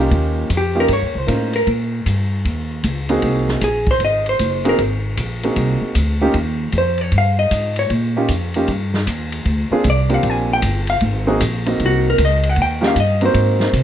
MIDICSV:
0, 0, Header, 1, 6, 480
1, 0, Start_track
1, 0, Tempo, 389358
1, 143, Time_signature, 4, 2, 24, 8
1, 17051, End_track
2, 0, Start_track
2, 0, Title_t, "Hollow-body jazz guitar"
2, 0, Program_c, 0, 26
2, 706, Note_on_c, 0, 67, 61
2, 970, Note_off_c, 0, 67, 0
2, 989, Note_on_c, 0, 70, 81
2, 1125, Note_off_c, 0, 70, 0
2, 1146, Note_on_c, 0, 73, 75
2, 1454, Note_off_c, 0, 73, 0
2, 1454, Note_on_c, 0, 72, 81
2, 1916, Note_off_c, 0, 72, 0
2, 1920, Note_on_c, 0, 70, 63
2, 2071, Note_off_c, 0, 70, 0
2, 4487, Note_on_c, 0, 68, 58
2, 4781, Note_off_c, 0, 68, 0
2, 4818, Note_on_c, 0, 72, 85
2, 4962, Note_off_c, 0, 72, 0
2, 4987, Note_on_c, 0, 75, 90
2, 5272, Note_off_c, 0, 75, 0
2, 5290, Note_on_c, 0, 72, 73
2, 5723, Note_off_c, 0, 72, 0
2, 5784, Note_on_c, 0, 70, 69
2, 5925, Note_off_c, 0, 70, 0
2, 8357, Note_on_c, 0, 72, 68
2, 8644, Note_off_c, 0, 72, 0
2, 8644, Note_on_c, 0, 73, 78
2, 8794, Note_off_c, 0, 73, 0
2, 8851, Note_on_c, 0, 77, 76
2, 9105, Note_off_c, 0, 77, 0
2, 9110, Note_on_c, 0, 75, 84
2, 9551, Note_off_c, 0, 75, 0
2, 9604, Note_on_c, 0, 73, 81
2, 9754, Note_off_c, 0, 73, 0
2, 12202, Note_on_c, 0, 74, 71
2, 12501, Note_off_c, 0, 74, 0
2, 12501, Note_on_c, 0, 77, 84
2, 12643, Note_off_c, 0, 77, 0
2, 12694, Note_on_c, 0, 80, 89
2, 12965, Note_off_c, 0, 80, 0
2, 12987, Note_on_c, 0, 79, 80
2, 13411, Note_off_c, 0, 79, 0
2, 13434, Note_on_c, 0, 77, 86
2, 13530, Note_off_c, 0, 77, 0
2, 14617, Note_on_c, 0, 66, 72
2, 14887, Note_off_c, 0, 66, 0
2, 14914, Note_on_c, 0, 70, 85
2, 15050, Note_off_c, 0, 70, 0
2, 15099, Note_on_c, 0, 75, 84
2, 15404, Note_off_c, 0, 75, 0
2, 15404, Note_on_c, 0, 78, 86
2, 15535, Note_off_c, 0, 78, 0
2, 15555, Note_on_c, 0, 79, 85
2, 15835, Note_off_c, 0, 79, 0
2, 15872, Note_on_c, 0, 77, 88
2, 16009, Note_off_c, 0, 77, 0
2, 16025, Note_on_c, 0, 75, 71
2, 16310, Note_off_c, 0, 75, 0
2, 16341, Note_on_c, 0, 72, 89
2, 17051, Note_off_c, 0, 72, 0
2, 17051, End_track
3, 0, Start_track
3, 0, Title_t, "Grand piano"
3, 0, Program_c, 1, 0
3, 0, Note_on_c, 1, 58, 62
3, 0, Note_on_c, 1, 61, 56
3, 0, Note_on_c, 1, 63, 58
3, 0, Note_on_c, 1, 65, 58
3, 0, Note_on_c, 1, 67, 68
3, 584, Note_off_c, 1, 61, 0
3, 585, Note_off_c, 1, 58, 0
3, 587, Note_off_c, 1, 67, 0
3, 589, Note_off_c, 1, 63, 0
3, 589, Note_off_c, 1, 65, 0
3, 925, Note_on_c, 1, 61, 60
3, 930, Note_on_c, 1, 58, 57
3, 930, Note_on_c, 1, 63, 61
3, 933, Note_on_c, 1, 65, 54
3, 934, Note_on_c, 1, 67, 76
3, 1081, Note_off_c, 1, 61, 0
3, 1084, Note_off_c, 1, 58, 0
3, 1084, Note_off_c, 1, 63, 0
3, 1085, Note_off_c, 1, 65, 0
3, 1086, Note_off_c, 1, 67, 0
3, 1563, Note_on_c, 1, 58, 49
3, 1568, Note_on_c, 1, 63, 42
3, 1569, Note_on_c, 1, 61, 43
3, 1569, Note_on_c, 1, 65, 50
3, 1573, Note_on_c, 1, 70, 63
3, 1856, Note_off_c, 1, 58, 0
3, 1858, Note_off_c, 1, 63, 0
3, 1859, Note_off_c, 1, 61, 0
3, 1859, Note_off_c, 1, 65, 0
3, 1861, Note_off_c, 1, 70, 0
3, 3813, Note_on_c, 1, 58, 70
3, 3815, Note_on_c, 1, 60, 68
3, 3816, Note_on_c, 1, 63, 68
3, 3821, Note_on_c, 1, 66, 69
3, 3827, Note_on_c, 1, 68, 79
3, 4431, Note_off_c, 1, 58, 0
3, 4431, Note_off_c, 1, 60, 0
3, 4432, Note_off_c, 1, 63, 0
3, 4434, Note_off_c, 1, 66, 0
3, 4437, Note_off_c, 1, 68, 0
3, 5726, Note_on_c, 1, 58, 68
3, 5732, Note_on_c, 1, 63, 65
3, 5733, Note_on_c, 1, 60, 68
3, 5736, Note_on_c, 1, 68, 77
3, 5738, Note_on_c, 1, 66, 64
3, 5884, Note_off_c, 1, 58, 0
3, 5887, Note_off_c, 1, 60, 0
3, 5887, Note_off_c, 1, 63, 0
3, 5889, Note_off_c, 1, 68, 0
3, 5890, Note_off_c, 1, 66, 0
3, 6701, Note_on_c, 1, 58, 60
3, 6707, Note_on_c, 1, 66, 55
3, 6709, Note_on_c, 1, 60, 49
3, 6712, Note_on_c, 1, 63, 53
3, 6712, Note_on_c, 1, 68, 58
3, 7314, Note_off_c, 1, 58, 0
3, 7317, Note_off_c, 1, 66, 0
3, 7318, Note_off_c, 1, 60, 0
3, 7320, Note_off_c, 1, 63, 0
3, 7320, Note_off_c, 1, 68, 0
3, 7661, Note_on_c, 1, 63, 66
3, 7662, Note_on_c, 1, 58, 71
3, 7665, Note_on_c, 1, 67, 84
3, 7667, Note_on_c, 1, 61, 65
3, 7668, Note_on_c, 1, 65, 60
3, 7811, Note_off_c, 1, 63, 0
3, 7812, Note_off_c, 1, 58, 0
3, 7813, Note_off_c, 1, 67, 0
3, 7814, Note_off_c, 1, 61, 0
3, 7814, Note_off_c, 1, 65, 0
3, 10065, Note_on_c, 1, 63, 62
3, 10067, Note_on_c, 1, 61, 57
3, 10068, Note_on_c, 1, 67, 71
3, 10069, Note_on_c, 1, 58, 64
3, 10072, Note_on_c, 1, 65, 64
3, 10213, Note_off_c, 1, 61, 0
3, 10213, Note_off_c, 1, 63, 0
3, 10214, Note_off_c, 1, 58, 0
3, 10214, Note_off_c, 1, 67, 0
3, 10216, Note_off_c, 1, 65, 0
3, 10551, Note_on_c, 1, 58, 62
3, 10552, Note_on_c, 1, 63, 52
3, 10553, Note_on_c, 1, 65, 56
3, 10555, Note_on_c, 1, 61, 59
3, 10558, Note_on_c, 1, 67, 67
3, 10696, Note_off_c, 1, 58, 0
3, 10696, Note_off_c, 1, 63, 0
3, 10697, Note_off_c, 1, 61, 0
3, 10697, Note_off_c, 1, 65, 0
3, 10699, Note_off_c, 1, 67, 0
3, 11975, Note_on_c, 1, 58, 63
3, 11977, Note_on_c, 1, 62, 64
3, 11984, Note_on_c, 1, 60, 61
3, 11984, Note_on_c, 1, 65, 62
3, 11992, Note_on_c, 1, 68, 76
3, 12127, Note_off_c, 1, 58, 0
3, 12129, Note_off_c, 1, 62, 0
3, 12132, Note_off_c, 1, 60, 0
3, 12132, Note_off_c, 1, 65, 0
3, 12136, Note_off_c, 1, 68, 0
3, 12443, Note_on_c, 1, 58, 65
3, 12445, Note_on_c, 1, 60, 56
3, 12451, Note_on_c, 1, 65, 54
3, 12454, Note_on_c, 1, 62, 51
3, 12455, Note_on_c, 1, 67, 62
3, 13065, Note_off_c, 1, 58, 0
3, 13066, Note_off_c, 1, 60, 0
3, 13069, Note_off_c, 1, 65, 0
3, 13070, Note_off_c, 1, 62, 0
3, 13071, Note_off_c, 1, 67, 0
3, 13893, Note_on_c, 1, 60, 68
3, 13895, Note_on_c, 1, 58, 73
3, 13899, Note_on_c, 1, 63, 74
3, 13899, Note_on_c, 1, 66, 69
3, 13899, Note_on_c, 1, 68, 80
3, 14047, Note_off_c, 1, 58, 0
3, 14047, Note_off_c, 1, 60, 0
3, 14049, Note_off_c, 1, 63, 0
3, 14049, Note_off_c, 1, 68, 0
3, 14050, Note_off_c, 1, 66, 0
3, 14375, Note_on_c, 1, 58, 65
3, 14380, Note_on_c, 1, 60, 60
3, 14386, Note_on_c, 1, 63, 53
3, 14389, Note_on_c, 1, 70, 65
3, 14390, Note_on_c, 1, 66, 53
3, 14991, Note_off_c, 1, 58, 0
3, 14994, Note_off_c, 1, 60, 0
3, 14997, Note_off_c, 1, 63, 0
3, 14998, Note_off_c, 1, 70, 0
3, 14999, Note_off_c, 1, 66, 0
3, 15793, Note_on_c, 1, 58, 67
3, 15793, Note_on_c, 1, 65, 64
3, 15794, Note_on_c, 1, 61, 65
3, 15798, Note_on_c, 1, 63, 63
3, 15803, Note_on_c, 1, 67, 78
3, 15956, Note_off_c, 1, 58, 0
3, 15956, Note_off_c, 1, 65, 0
3, 15957, Note_off_c, 1, 61, 0
3, 15959, Note_off_c, 1, 63, 0
3, 15962, Note_off_c, 1, 67, 0
3, 16290, Note_on_c, 1, 58, 70
3, 16295, Note_on_c, 1, 60, 66
3, 16297, Note_on_c, 1, 63, 58
3, 16303, Note_on_c, 1, 70, 75
3, 16305, Note_on_c, 1, 66, 60
3, 16908, Note_off_c, 1, 58, 0
3, 16911, Note_off_c, 1, 60, 0
3, 16912, Note_off_c, 1, 63, 0
3, 16915, Note_off_c, 1, 70, 0
3, 16916, Note_off_c, 1, 66, 0
3, 17051, End_track
4, 0, Start_track
4, 0, Title_t, "Upright bass"
4, 0, Program_c, 2, 32
4, 134, Note_on_c, 2, 39, 81
4, 604, Note_off_c, 2, 39, 0
4, 612, Note_on_c, 2, 41, 68
4, 1084, Note_off_c, 2, 41, 0
4, 1091, Note_on_c, 2, 43, 67
4, 1256, Note_on_c, 2, 39, 53
4, 1275, Note_off_c, 2, 43, 0
4, 1410, Note_off_c, 2, 39, 0
4, 1417, Note_on_c, 2, 37, 66
4, 1566, Note_off_c, 2, 37, 0
4, 1574, Note_on_c, 2, 45, 77
4, 2045, Note_off_c, 2, 45, 0
4, 2059, Note_on_c, 2, 46, 73
4, 2528, Note_off_c, 2, 46, 0
4, 2537, Note_on_c, 2, 43, 69
4, 3007, Note_off_c, 2, 43, 0
4, 3020, Note_on_c, 2, 39, 69
4, 3489, Note_off_c, 2, 39, 0
4, 3496, Note_on_c, 2, 37, 76
4, 3967, Note_off_c, 2, 37, 0
4, 3976, Note_on_c, 2, 36, 77
4, 4444, Note_off_c, 2, 36, 0
4, 4452, Note_on_c, 2, 34, 78
4, 4921, Note_off_c, 2, 34, 0
4, 4929, Note_on_c, 2, 32, 69
4, 5404, Note_off_c, 2, 32, 0
4, 5416, Note_on_c, 2, 30, 73
4, 5887, Note_off_c, 2, 30, 0
4, 5894, Note_on_c, 2, 32, 74
4, 6366, Note_off_c, 2, 32, 0
4, 6381, Note_on_c, 2, 34, 75
4, 6846, Note_off_c, 2, 34, 0
4, 6854, Note_on_c, 2, 36, 79
4, 7151, Note_off_c, 2, 36, 0
4, 7337, Note_on_c, 2, 38, 76
4, 7807, Note_off_c, 2, 38, 0
4, 7815, Note_on_c, 2, 39, 83
4, 8286, Note_off_c, 2, 39, 0
4, 8293, Note_on_c, 2, 41, 78
4, 8765, Note_off_c, 2, 41, 0
4, 8775, Note_on_c, 2, 43, 81
4, 9246, Note_off_c, 2, 43, 0
4, 9260, Note_on_c, 2, 44, 86
4, 9729, Note_off_c, 2, 44, 0
4, 9738, Note_on_c, 2, 46, 79
4, 10208, Note_off_c, 2, 46, 0
4, 10218, Note_on_c, 2, 41, 75
4, 10687, Note_off_c, 2, 41, 0
4, 10697, Note_on_c, 2, 43, 76
4, 11167, Note_off_c, 2, 43, 0
4, 11177, Note_on_c, 2, 39, 73
4, 11647, Note_off_c, 2, 39, 0
4, 11652, Note_on_c, 2, 38, 79
4, 11950, Note_off_c, 2, 38, 0
4, 12133, Note_on_c, 2, 36, 83
4, 12605, Note_off_c, 2, 36, 0
4, 12611, Note_on_c, 2, 34, 73
4, 13084, Note_off_c, 2, 34, 0
4, 13098, Note_on_c, 2, 31, 86
4, 13567, Note_off_c, 2, 31, 0
4, 13577, Note_on_c, 2, 32, 83
4, 14047, Note_off_c, 2, 32, 0
4, 14057, Note_on_c, 2, 34, 79
4, 14527, Note_off_c, 2, 34, 0
4, 14540, Note_on_c, 2, 36, 82
4, 15009, Note_off_c, 2, 36, 0
4, 15016, Note_on_c, 2, 37, 92
4, 15484, Note_off_c, 2, 37, 0
4, 15491, Note_on_c, 2, 39, 83
4, 15964, Note_off_c, 2, 39, 0
4, 15974, Note_on_c, 2, 43, 81
4, 16441, Note_off_c, 2, 43, 0
4, 16448, Note_on_c, 2, 44, 82
4, 16923, Note_off_c, 2, 44, 0
4, 16928, Note_on_c, 2, 48, 84
4, 17051, Note_off_c, 2, 48, 0
4, 17051, End_track
5, 0, Start_track
5, 0, Title_t, "Muted upright bass strokes"
5, 7163, Note_on_c, 9, 29, 41
5, 7286, Note_off_c, 9, 29, 0
5, 11959, Note_on_c, 9, 29, 43
5, 12082, Note_off_c, 9, 29, 0
5, 17051, End_track
6, 0, Start_track
6, 0, Title_t, "Drums"
6, 137, Note_on_c, 9, 36, 20
6, 139, Note_on_c, 9, 51, 46
6, 260, Note_off_c, 9, 36, 0
6, 262, Note_off_c, 9, 51, 0
6, 615, Note_on_c, 9, 44, 50
6, 615, Note_on_c, 9, 51, 61
6, 618, Note_on_c, 9, 36, 25
6, 738, Note_off_c, 9, 44, 0
6, 738, Note_off_c, 9, 51, 0
6, 741, Note_off_c, 9, 36, 0
6, 1088, Note_on_c, 9, 51, 60
6, 1098, Note_on_c, 9, 36, 18
6, 1211, Note_off_c, 9, 51, 0
6, 1221, Note_off_c, 9, 36, 0
6, 1580, Note_on_c, 9, 36, 20
6, 1580, Note_on_c, 9, 44, 46
6, 1580, Note_on_c, 9, 51, 65
6, 1703, Note_off_c, 9, 36, 0
6, 1703, Note_off_c, 9, 44, 0
6, 1703, Note_off_c, 9, 51, 0
6, 1888, Note_on_c, 9, 51, 46
6, 2012, Note_off_c, 9, 51, 0
6, 2058, Note_on_c, 9, 51, 46
6, 2060, Note_on_c, 9, 36, 17
6, 2181, Note_off_c, 9, 51, 0
6, 2183, Note_off_c, 9, 36, 0
6, 2540, Note_on_c, 9, 44, 47
6, 2540, Note_on_c, 9, 51, 66
6, 2541, Note_on_c, 9, 36, 17
6, 2663, Note_off_c, 9, 44, 0
6, 2663, Note_off_c, 9, 51, 0
6, 2664, Note_off_c, 9, 36, 0
6, 3023, Note_on_c, 9, 36, 18
6, 3024, Note_on_c, 9, 51, 51
6, 3146, Note_off_c, 9, 36, 0
6, 3147, Note_off_c, 9, 51, 0
6, 3496, Note_on_c, 9, 44, 52
6, 3496, Note_on_c, 9, 51, 65
6, 3502, Note_on_c, 9, 36, 19
6, 3619, Note_off_c, 9, 44, 0
6, 3619, Note_off_c, 9, 51, 0
6, 3625, Note_off_c, 9, 36, 0
6, 3808, Note_on_c, 9, 51, 44
6, 3931, Note_off_c, 9, 51, 0
6, 3970, Note_on_c, 9, 51, 52
6, 3978, Note_on_c, 9, 36, 16
6, 4094, Note_off_c, 9, 51, 0
6, 4101, Note_off_c, 9, 36, 0
6, 4290, Note_on_c, 9, 38, 41
6, 4413, Note_off_c, 9, 38, 0
6, 4453, Note_on_c, 9, 44, 45
6, 4453, Note_on_c, 9, 51, 59
6, 4457, Note_on_c, 9, 36, 18
6, 4577, Note_off_c, 9, 44, 0
6, 4577, Note_off_c, 9, 51, 0
6, 4581, Note_off_c, 9, 36, 0
6, 4764, Note_on_c, 9, 51, 40
6, 4770, Note_on_c, 9, 36, 53
6, 4887, Note_off_c, 9, 51, 0
6, 4893, Note_off_c, 9, 36, 0
6, 4928, Note_on_c, 9, 51, 52
6, 4937, Note_on_c, 9, 36, 23
6, 5052, Note_off_c, 9, 51, 0
6, 5060, Note_off_c, 9, 36, 0
6, 5250, Note_on_c, 9, 51, 45
6, 5373, Note_off_c, 9, 51, 0
6, 5415, Note_on_c, 9, 44, 49
6, 5415, Note_on_c, 9, 51, 67
6, 5421, Note_on_c, 9, 36, 18
6, 5538, Note_off_c, 9, 44, 0
6, 5538, Note_off_c, 9, 51, 0
6, 5544, Note_off_c, 9, 36, 0
6, 5733, Note_on_c, 9, 51, 45
6, 5857, Note_off_c, 9, 51, 0
6, 5900, Note_on_c, 9, 51, 50
6, 5902, Note_on_c, 9, 36, 16
6, 6023, Note_off_c, 9, 51, 0
6, 6025, Note_off_c, 9, 36, 0
6, 6378, Note_on_c, 9, 44, 57
6, 6378, Note_on_c, 9, 51, 70
6, 6383, Note_on_c, 9, 36, 19
6, 6501, Note_off_c, 9, 44, 0
6, 6501, Note_off_c, 9, 51, 0
6, 6506, Note_off_c, 9, 36, 0
6, 6698, Note_on_c, 9, 51, 42
6, 6821, Note_off_c, 9, 51, 0
6, 6856, Note_on_c, 9, 51, 55
6, 6862, Note_on_c, 9, 36, 22
6, 6979, Note_off_c, 9, 51, 0
6, 6985, Note_off_c, 9, 36, 0
6, 7334, Note_on_c, 9, 44, 57
6, 7334, Note_on_c, 9, 51, 69
6, 7340, Note_on_c, 9, 36, 22
6, 7458, Note_off_c, 9, 44, 0
6, 7458, Note_off_c, 9, 51, 0
6, 7464, Note_off_c, 9, 36, 0
6, 7812, Note_on_c, 9, 51, 54
6, 7819, Note_on_c, 9, 36, 18
6, 7936, Note_off_c, 9, 51, 0
6, 7943, Note_off_c, 9, 36, 0
6, 8287, Note_on_c, 9, 44, 44
6, 8287, Note_on_c, 9, 51, 57
6, 8298, Note_on_c, 9, 36, 19
6, 8411, Note_off_c, 9, 44, 0
6, 8411, Note_off_c, 9, 51, 0
6, 8421, Note_off_c, 9, 36, 0
6, 8601, Note_on_c, 9, 51, 40
6, 8724, Note_off_c, 9, 51, 0
6, 8774, Note_on_c, 9, 51, 58
6, 8779, Note_on_c, 9, 36, 22
6, 8897, Note_off_c, 9, 51, 0
6, 8903, Note_off_c, 9, 36, 0
6, 9258, Note_on_c, 9, 44, 54
6, 9258, Note_on_c, 9, 51, 68
6, 9262, Note_on_c, 9, 36, 23
6, 9381, Note_off_c, 9, 44, 0
6, 9381, Note_off_c, 9, 51, 0
6, 9385, Note_off_c, 9, 36, 0
6, 9565, Note_on_c, 9, 51, 48
6, 9688, Note_off_c, 9, 51, 0
6, 9739, Note_on_c, 9, 51, 47
6, 9742, Note_on_c, 9, 36, 19
6, 9862, Note_off_c, 9, 51, 0
6, 9865, Note_off_c, 9, 36, 0
6, 10213, Note_on_c, 9, 44, 58
6, 10213, Note_on_c, 9, 51, 66
6, 10221, Note_on_c, 9, 36, 25
6, 10336, Note_off_c, 9, 44, 0
6, 10336, Note_off_c, 9, 51, 0
6, 10344, Note_off_c, 9, 36, 0
6, 10529, Note_on_c, 9, 51, 41
6, 10652, Note_off_c, 9, 51, 0
6, 10696, Note_on_c, 9, 51, 53
6, 10703, Note_on_c, 9, 36, 21
6, 10819, Note_off_c, 9, 51, 0
6, 10826, Note_off_c, 9, 36, 0
6, 11019, Note_on_c, 9, 38, 49
6, 11142, Note_off_c, 9, 38, 0
6, 11180, Note_on_c, 9, 44, 63
6, 11180, Note_on_c, 9, 51, 71
6, 11181, Note_on_c, 9, 36, 21
6, 11304, Note_off_c, 9, 44, 0
6, 11304, Note_off_c, 9, 51, 0
6, 11305, Note_off_c, 9, 36, 0
6, 11492, Note_on_c, 9, 51, 49
6, 11615, Note_off_c, 9, 51, 0
6, 11655, Note_on_c, 9, 51, 50
6, 11658, Note_on_c, 9, 36, 23
6, 11779, Note_off_c, 9, 51, 0
6, 11781, Note_off_c, 9, 36, 0
6, 12131, Note_on_c, 9, 44, 52
6, 12131, Note_on_c, 9, 51, 60
6, 12138, Note_on_c, 9, 36, 22
6, 12254, Note_off_c, 9, 44, 0
6, 12254, Note_off_c, 9, 51, 0
6, 12261, Note_off_c, 9, 36, 0
6, 12445, Note_on_c, 9, 51, 43
6, 12569, Note_off_c, 9, 51, 0
6, 12610, Note_on_c, 9, 51, 56
6, 12617, Note_on_c, 9, 36, 22
6, 12733, Note_off_c, 9, 51, 0
6, 12741, Note_off_c, 9, 36, 0
6, 13093, Note_on_c, 9, 44, 61
6, 13093, Note_on_c, 9, 51, 77
6, 13098, Note_on_c, 9, 36, 18
6, 13216, Note_off_c, 9, 44, 0
6, 13216, Note_off_c, 9, 51, 0
6, 13221, Note_off_c, 9, 36, 0
6, 13402, Note_on_c, 9, 51, 48
6, 13525, Note_off_c, 9, 51, 0
6, 13568, Note_on_c, 9, 51, 53
6, 13579, Note_on_c, 9, 36, 17
6, 13691, Note_off_c, 9, 51, 0
6, 13702, Note_off_c, 9, 36, 0
6, 14060, Note_on_c, 9, 44, 65
6, 14060, Note_on_c, 9, 51, 74
6, 14061, Note_on_c, 9, 36, 17
6, 14183, Note_off_c, 9, 44, 0
6, 14183, Note_off_c, 9, 51, 0
6, 14185, Note_off_c, 9, 36, 0
6, 14379, Note_on_c, 9, 51, 46
6, 14502, Note_off_c, 9, 51, 0
6, 14542, Note_on_c, 9, 51, 52
6, 14544, Note_on_c, 9, 36, 18
6, 14665, Note_off_c, 9, 51, 0
6, 14667, Note_off_c, 9, 36, 0
6, 15017, Note_on_c, 9, 44, 49
6, 15017, Note_on_c, 9, 51, 73
6, 15020, Note_on_c, 9, 36, 21
6, 15140, Note_off_c, 9, 44, 0
6, 15140, Note_off_c, 9, 51, 0
6, 15143, Note_off_c, 9, 36, 0
6, 15329, Note_on_c, 9, 51, 54
6, 15452, Note_off_c, 9, 51, 0
6, 15484, Note_on_c, 9, 51, 51
6, 15495, Note_on_c, 9, 36, 16
6, 15607, Note_off_c, 9, 51, 0
6, 15619, Note_off_c, 9, 36, 0
6, 15812, Note_on_c, 9, 38, 52
6, 15936, Note_off_c, 9, 38, 0
6, 15976, Note_on_c, 9, 36, 18
6, 15976, Note_on_c, 9, 44, 53
6, 15976, Note_on_c, 9, 51, 62
6, 16099, Note_off_c, 9, 44, 0
6, 16099, Note_off_c, 9, 51, 0
6, 16100, Note_off_c, 9, 36, 0
6, 16284, Note_on_c, 9, 51, 44
6, 16407, Note_off_c, 9, 51, 0
6, 16449, Note_on_c, 9, 51, 59
6, 16453, Note_on_c, 9, 36, 19
6, 16572, Note_off_c, 9, 51, 0
6, 16577, Note_off_c, 9, 36, 0
6, 16763, Note_on_c, 9, 38, 61
6, 16886, Note_off_c, 9, 38, 0
6, 16931, Note_on_c, 9, 44, 63
6, 16931, Note_on_c, 9, 51, 72
6, 16934, Note_on_c, 9, 36, 23
6, 17051, Note_off_c, 9, 36, 0
6, 17051, Note_off_c, 9, 44, 0
6, 17051, Note_off_c, 9, 51, 0
6, 17051, End_track
0, 0, End_of_file